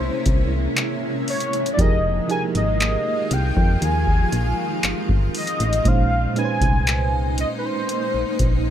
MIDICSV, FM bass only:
0, 0, Header, 1, 2, 480
1, 0, Start_track
1, 0, Key_signature, -4, "minor"
1, 0, Tempo, 1016949
1, 843, Time_signature, 4, 2, 24, 8
1, 4107, End_track
2, 0, Start_track
2, 0, Title_t, "FM bass"
2, 0, Program_c, 0, 39
2, 4, Note_on_c, 0, 36, 51
2, 52, Note_off_c, 0, 36, 0
2, 124, Note_on_c, 0, 36, 89
2, 322, Note_off_c, 0, 36, 0
2, 844, Note_on_c, 0, 29, 94
2, 1042, Note_off_c, 0, 29, 0
2, 1204, Note_on_c, 0, 32, 93
2, 1402, Note_off_c, 0, 32, 0
2, 1564, Note_on_c, 0, 36, 98
2, 1663, Note_off_c, 0, 36, 0
2, 1684, Note_on_c, 0, 41, 99
2, 1783, Note_off_c, 0, 41, 0
2, 1803, Note_on_c, 0, 39, 93
2, 2002, Note_off_c, 0, 39, 0
2, 2043, Note_on_c, 0, 34, 90
2, 2142, Note_off_c, 0, 34, 0
2, 2284, Note_on_c, 0, 31, 50
2, 2332, Note_off_c, 0, 31, 0
2, 2404, Note_on_c, 0, 31, 97
2, 2503, Note_off_c, 0, 31, 0
2, 2644, Note_on_c, 0, 33, 97
2, 2743, Note_off_c, 0, 33, 0
2, 2763, Note_on_c, 0, 34, 113
2, 2962, Note_off_c, 0, 34, 0
2, 3120, Note_on_c, 0, 36, 97
2, 3518, Note_off_c, 0, 36, 0
2, 3844, Note_on_c, 0, 34, 49
2, 3891, Note_off_c, 0, 34, 0
2, 3964, Note_on_c, 0, 34, 91
2, 4107, Note_off_c, 0, 34, 0
2, 4107, End_track
0, 0, End_of_file